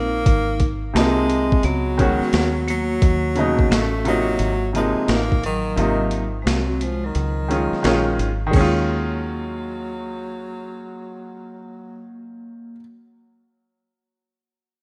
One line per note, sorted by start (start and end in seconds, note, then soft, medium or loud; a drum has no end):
0.00 0.23 A#1 medium
0.00 0.71 A#3 loud
0.00 0.70 D#4 medium
0.26 0.92 G#1 loud
0.26 kick loud
0.26 closed hi-hat medium
0.60 kick medium
0.60 closed hi-hat medium
0.94 1.60 C2 medium
0.94 1.63 C3 medium
0.94 1.64 F3 medium
0.94 1.67 G#3 loud
0.94 1.64 A#3 medium
0.94 1.60 C4 medium
0.94 1.65 D#4 medium
0.94 snare loud
0.94 closed hi-hat loud
1.30 closed hi-hat medium
1.52 kick loud
1.63 2.18 C#2 loud
1.63 2.68 F#3 loud
1.63 2.68 B3 medium
1.63 closed hi-hat medium
1.98 2.50 D#3 medium
1.98 2.51 G#3 medium
1.98 2.51 C#4 medium
1.98 2.52 F#4 medium
1.98 kick medium
1.98 closed hi-hat medium
2.21 muted fingered electric bass stroke soft
2.21 snare soft
2.33 2.99 D#2 medium
2.33 snare loud
2.33 closed hi-hat medium
2.68 3.76 F#3 loud
2.68 3.67 A#3 medium
2.68 closed hi-hat medium
3.02 3.68 D#2 loud
3.02 kick loud
3.02 closed hi-hat medium
3.35 3.80 B2 medium
3.35 3.79 C#3 medium
3.35 3.80 F#3 medium
3.35 3.81 D#4 medium
3.35 closed hi-hat medium
3.59 kick medium
3.71 4.37 A1 medium
3.71 4.07 A3 loud
3.71 4.06 C#4 medium
3.71 snare loud
3.71 closed hi-hat loud
4.05 4.48 C3 medium
4.05 4.72 F#3 loud
4.05 4.71 A#3 medium
4.05 4.50 A#3 medium
4.05 4.50 D#4 medium
4.05 4.49 F4 medium
4.05 closed hi-hat medium
4.39 4.93 G#1 loud
4.39 closed hi-hat medium
4.73 5.17 C3 medium
4.73 5.18 F3 medium
4.73 5.18 A#3 medium
4.73 5.07 C4 medium
4.73 5.19 D#4 medium
4.73 closed hi-hat medium
4.77 5.13 G#3 medium
4.96 muted fingered electric bass stroke soft
5.08 5.74 A1 medium
5.08 5.45 A#3 loud
5.08 5.44 D#4 medium
5.08 snare loud
5.08 closed hi-hat medium
5.32 kick medium
5.44 6.19 D#3 medium
5.44 6.18 F#3 medium
5.44 closed hi-hat medium
5.76 6.43 G#1 loud
5.76 6.20 C3 medium
5.76 6.22 A#3 medium
5.76 6.22 D#4 medium
5.76 6.21 F4 medium
5.76 closed hi-hat medium
6.11 closed hi-hat medium
6.42 7.12 C2 medium
6.42 6.50 F3 medium
6.42 6.47 G#3 medium
6.47 6.85 F#3 medium
6.47 6.82 C4 medium
6.47 snare loud
6.47 closed hi-hat medium
6.81 7.08 F3 medium
6.81 7.04 G#3 medium
6.81 closed hi-hat medium
7.04 8.21 D#3 medium
7.04 8.19 F#3 medium
7.15 7.69 C#2 loud
7.15 closed hi-hat medium
7.48 7.81 D#3 medium
7.48 7.83 G#3 medium
7.48 7.84 C#4 medium
7.48 7.85 F4 medium
7.48 closed hi-hat medium
7.72 muted fingered electric bass stroke soft
7.72 snare soft
7.83 8.17 A#1 medium
7.83 8.27 D#3 medium
7.83 8.28 G#3 medium
7.83 8.28 C#4 medium
7.83 8.29 F4 medium
7.83 snare loud
7.83 closed hi-hat medium
8.19 8.52 G#1 medium
8.19 closed hi-hat medium
8.47 12.72 D#3 medium
8.51 12.75 D#2 loud
8.51 12.74 G#3 medium
8.51 12.76 A#3 medium
8.51 kick loud
8.51 crash medium
8.56 12.07 F#3 medium
8.56 12.77 C#4 medium
8.61 12.79 F4 medium